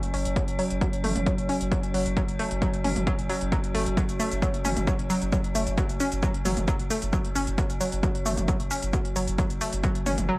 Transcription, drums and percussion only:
0.03 closed hi-hat medium
0.14 open hi-hat loud
0.25 closed hi-hat medium
0.36 kick loud
0.36 closed hi-hat medium
0.48 closed hi-hat medium
0.59 open hi-hat loud
0.70 closed hi-hat medium
0.81 kick loud
0.81 closed hi-hat medium
0.93 closed hi-hat medium
1.04 mid tom medium
1.04 open hi-hat loud
1.16 closed hi-hat medium
1.16 mid tom loud
1.26 kick loud
1.26 closed hi-hat medium
1.38 closed hi-hat medium
1.49 open hi-hat loud
1.61 closed hi-hat medium
1.72 kick loud
1.72 closed hi-hat medium
1.83 closed hi-hat medium
1.94 open hi-hat loud
2.06 closed hi-hat medium
2.17 kick loud
2.17 closed hi-hat medium
2.28 closed hi-hat medium
2.39 open hi-hat loud
2.51 closed hi-hat medium
2.62 kick loud
2.62 closed hi-hat medium
2.74 closed hi-hat medium
2.84 mid tom loud
2.84 open hi-hat loud
2.96 closed hi-hat medium
2.96 mid tom loud
3.07 kick loud
3.07 closed hi-hat medium
3.19 closed hi-hat medium
3.29 open hi-hat loud
3.41 closed hi-hat medium
3.52 kick loud
3.52 closed hi-hat medium
3.64 closed hi-hat medium
3.75 open hi-hat loud
3.86 closed hi-hat medium
3.97 kick loud
3.97 closed hi-hat medium
3.97 shaker soft
4.09 closed hi-hat medium
4.09 shaker soft
4.20 open hi-hat loud
4.20 shaker medium
4.32 closed hi-hat medium
4.32 shaker soft
4.42 kick loud
4.42 closed hi-hat medium
4.42 shaker soft
4.54 closed hi-hat medium
4.65 mid tom medium
4.65 open hi-hat loud
4.65 shaker medium
4.77 closed hi-hat medium
4.77 mid tom loud
4.77 shaker soft
4.87 kick loud
4.87 closed hi-hat medium
4.87 shaker soft
4.99 closed hi-hat medium
5.10 open hi-hat loud
5.10 shaker medium
5.22 closed hi-hat medium
5.22 shaker soft
5.32 kick loud
5.32 closed hi-hat medium
5.32 shaker soft
5.44 closed hi-hat medium
5.55 open hi-hat loud
5.55 shaker medium
5.67 closed hi-hat medium
5.67 shaker soft
5.78 kick loud
5.78 closed hi-hat medium
5.78 shaker soft
5.89 closed hi-hat medium
5.89 shaker soft
6.00 open hi-hat loud
6.00 shaker medium
6.12 closed hi-hat medium
6.12 shaker soft
6.23 kick loud
6.23 closed hi-hat medium
6.23 shaker soft
6.34 closed hi-hat medium
6.45 mid tom medium
6.45 open hi-hat loud
6.45 shaker medium
6.57 closed hi-hat medium
6.57 mid tom medium
6.57 shaker soft
6.68 kick loud
6.68 closed hi-hat medium
6.68 shaker soft
6.79 closed hi-hat medium
6.90 open hi-hat loud
6.90 shaker medium
7.02 closed hi-hat medium
7.02 shaker soft
7.13 kick loud
7.13 closed hi-hat medium
7.13 shaker soft
7.25 closed hi-hat medium
7.36 open hi-hat loud
7.36 shaker medium
7.47 closed hi-hat medium
7.47 shaker soft
7.58 kick loud
7.58 closed hi-hat medium
7.58 shaker soft
7.70 closed hi-hat medium
7.70 shaker soft
7.81 open hi-hat loud
7.81 shaker medium
7.92 closed hi-hat medium
7.92 shaker soft
8.03 kick loud
8.03 closed hi-hat medium
8.03 shaker soft
8.15 closed hi-hat medium
8.26 mid tom medium
8.26 open hi-hat loud
8.26 shaker medium
8.37 closed hi-hat medium
8.37 mid tom medium
8.37 shaker soft
8.48 kick loud
8.48 closed hi-hat medium
8.48 shaker soft
8.60 closed hi-hat medium
8.71 open hi-hat loud
8.71 shaker medium
8.83 closed hi-hat medium
8.83 shaker soft
8.93 kick loud
8.93 closed hi-hat medium
8.93 shaker soft
9.05 closed hi-hat medium
9.16 open hi-hat loud
9.16 shaker medium
9.28 closed hi-hat medium
9.28 shaker soft
9.38 kick loud
9.38 closed hi-hat medium
9.38 shaker soft
9.50 closed hi-hat medium
9.50 shaker soft
9.61 open hi-hat loud
9.61 shaker medium
9.73 closed hi-hat medium
9.73 shaker soft
9.84 kick loud
9.84 closed hi-hat medium
9.84 shaker soft
9.95 closed hi-hat medium
10.06 mid tom medium
10.06 open hi-hat loud
10.06 shaker medium
10.18 closed hi-hat medium
10.18 mid tom medium
10.18 shaker soft

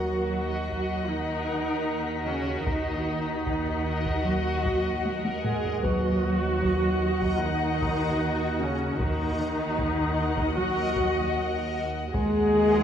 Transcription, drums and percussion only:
0.70 taiko soft
2.67 taiko medium
3.47 taiko medium
4.06 taiko medium
4.65 taiko medium
5.05 taiko high medium
5.25 taiko high medium
5.44 taiko low-mid medium
5.65 taiko low medium
5.85 taiko medium
6.63 taiko medium
7.22 taiko medium
7.82 taiko medium
9.00 taiko medium
9.78 taiko medium
10.38 taiko medium
10.96 taiko medium
12.14 taiko medium

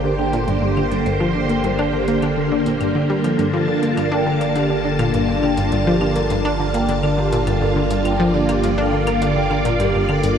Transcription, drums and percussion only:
0.19 claves soft
0.33 closed hi-hat medium
0.48 closed hi-hat medium
0.77 claves medium
0.92 closed hi-hat medium
1.06 closed hi-hat soft
1.21 claves soft
1.49 closed hi-hat medium
1.64 closed hi-hat soft
1.79 claves medium
2.08 closed hi-hat medium
2.22 closed hi-hat soft
2.22 claves soft
2.66 closed hi-hat medium
2.81 closed hi-hat soft
2.81 claves medium
3.24 closed hi-hat medium
3.24 claves soft
3.39 closed hi-hat soft
3.39 claves soft
3.83 closed hi-hat medium
3.97 closed hi-hat soft
3.97 claves medium
4.41 closed hi-hat medium
4.41 claves soft
4.56 closed hi-hat soft
4.99 closed hi-hat medium
4.99 claves medium
5.14 closed hi-hat soft
5.43 claves soft
5.57 closed hi-hat medium
5.72 closed hi-hat soft
6.01 claves medium
6.16 closed hi-hat medium
6.30 closed hi-hat soft
6.45 claves soft
6.74 closed hi-hat medium
6.89 closed hi-hat soft
7.03 claves medium
7.33 closed hi-hat medium
7.47 closed hi-hat soft
7.47 claves soft
7.91 closed hi-hat medium
8.05 closed hi-hat soft
8.05 claves medium
8.49 closed hi-hat medium
8.49 claves soft
8.64 closed hi-hat soft
9.07 closed hi-hat medium
9.07 claves medium
9.22 closed hi-hat soft
9.51 claves soft
9.65 closed hi-hat medium
9.80 closed hi-hat soft
10.09 claves medium
10.23 closed hi-hat medium

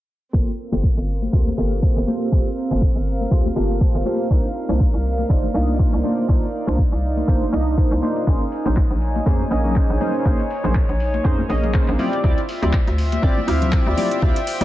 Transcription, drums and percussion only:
0.34 kick loud
0.48 closed hi-hat soft
0.72 closed hi-hat medium
0.72 high conga medium
0.83 kick loud
0.97 closed hi-hat soft
1.22 closed hi-hat medium
1.22 high conga medium
1.33 kick loud
1.47 high conga medium
1.72 closed hi-hat medium
1.83 kick loud
2.08 high conga medium
2.21 closed hi-hat medium
2.32 kick loud
2.46 closed hi-hat soft
2.71 closed hi-hat medium
2.71 high conga medium
2.82 kick loud
2.96 closed hi-hat soft
3.21 closed hi-hat medium
3.21 high conga medium
3.31 kick loud
3.46 high conga medium
3.70 closed hi-hat medium
3.81 kick loud
4.05 high conga medium
4.20 closed hi-hat medium
4.30 kick loud
4.45 closed hi-hat soft
4.69 closed hi-hat medium
4.69 high conga medium
4.80 kick loud
4.94 closed hi-hat soft
5.19 closed hi-hat medium
5.19 high conga medium
5.30 kick loud
5.44 high conga medium
5.68 closed hi-hat medium
5.79 kick loud
6.04 high conga medium
6.18 closed hi-hat medium
6.29 kick loud
6.43 closed hi-hat soft
6.68 closed hi-hat medium
6.68 high conga medium
6.78 kick loud
6.92 closed hi-hat soft
7.17 closed hi-hat medium
7.17 high conga medium
7.28 kick loud
7.42 high conga medium
7.67 closed hi-hat medium
7.78 kick loud
8.02 high conga medium
8.16 closed hi-hat medium
8.27 kick loud
8.41 closed hi-hat soft
8.52 open hi-hat loud
8.65 closed hi-hat medium
8.65 high conga medium
8.65 low conga medium
8.76 kick loud
8.76 clap loud
8.91 closed hi-hat soft
9.02 open hi-hat medium
9.16 closed hi-hat medium
9.16 high conga medium
9.26 kick loud
9.40 high conga medium
9.51 open hi-hat loud
9.65 closed hi-hat medium
9.65 low conga medium
9.76 kick loud
9.76 clap loud
10.00 open hi-hat medium
10.00 high conga medium
10.00 low conga medium
10.15 closed hi-hat medium
10.26 kick loud
10.40 closed hi-hat soft
10.50 open hi-hat loud
10.64 closed hi-hat medium
10.64 high conga medium
10.64 low conga medium
10.75 kick loud
10.75 clap loud
10.89 closed hi-hat medium
11.00 open hi-hat medium
11.14 closed hi-hat medium
11.14 high conga medium
11.25 kick loud
11.39 high conga medium
11.50 open hi-hat loud
11.64 closed hi-hat medium
11.64 low conga medium
11.74 kick loud
11.74 clap loud
11.88 clap soft
11.99 open hi-hat medium
11.99 high conga medium
11.99 low conga medium
12.13 closed hi-hat medium
12.24 kick loud
12.38 closed hi-hat soft
12.49 open hi-hat loud
12.62 closed hi-hat medium
12.62 high conga medium
12.62 low conga medium
12.73 kick loud
12.73 clap loud
12.88 closed hi-hat medium
12.98 open hi-hat medium
13.12 closed hi-hat medium
13.12 high conga medium
13.23 kick loud
13.38 high conga medium
13.48 open hi-hat loud
13.62 closed hi-hat medium
13.62 low conga medium
13.72 kick loud
13.72 clap loud
13.97 open hi-hat medium
13.97 high conga medium
13.97 low conga medium
14.11 closed hi-hat medium
14.22 kick loud
14.36 closed hi-hat medium
14.47 open hi-hat loud
14.61 closed hi-hat medium
14.61 high conga medium
14.61 low conga medium

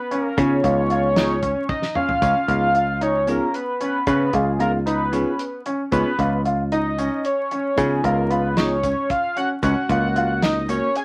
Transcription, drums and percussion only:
0.11 closed hi-hat medium
0.38 kick loud
0.38 closed hi-hat medium
0.64 kick medium
0.64 closed hi-hat medium
0.90 closed hi-hat medium
1.16 snare loud
1.16 closed hi-hat medium
1.43 kick medium
1.43 closed hi-hat medium
1.69 kick medium
1.69 high tom medium
1.82 snare medium
1.95 mid tom medium
2.09 floor tom medium
2.22 kick medium
2.22 closed hi-hat medium
2.22 shaker soft
2.48 kick medium
2.48 closed hi-hat soft
2.75 closed hi-hat soft
3.01 closed hi-hat medium
3.27 closed hi-hat medium
3.27 shaker soft
3.54 closed hi-hat medium
3.81 closed hi-hat medium
4.07 kick medium
4.07 closed hi-hat medium
4.07 shaker medium
4.33 kick medium
4.33 closed hi-hat medium
4.60 closed hi-hat soft
4.87 closed hi-hat medium
5.13 closed hi-hat medium
5.13 shaker soft
5.39 closed hi-hat medium
5.66 closed hi-hat soft
5.92 kick medium
5.92 closed hi-hat medium
5.92 shaker medium
6.19 kick medium
6.19 closed hi-hat medium
6.46 closed hi-hat soft
6.72 closed hi-hat medium
6.98 closed hi-hat medium
6.98 shaker soft
7.25 closed hi-hat medium
7.51 closed hi-hat soft
7.78 kick medium
7.78 closed hi-hat medium
7.78 shaker soft
8.04 kick medium
8.04 closed hi-hat medium
8.31 closed hi-hat soft
8.57 snare medium
8.57 closed hi-hat medium
8.83 kick medium
8.83 closed hi-hat medium
8.83 shaker soft
9.10 kick medium
9.10 closed hi-hat medium
9.37 closed hi-hat soft
9.63 kick medium
9.63 closed hi-hat medium
9.63 shaker soft
9.89 kick medium
9.89 closed hi-hat medium
10.16 closed hi-hat medium
10.43 snare medium
10.43 closed hi-hat medium
10.69 closed hi-hat medium
10.69 shaker soft
10.95 closed hi-hat medium

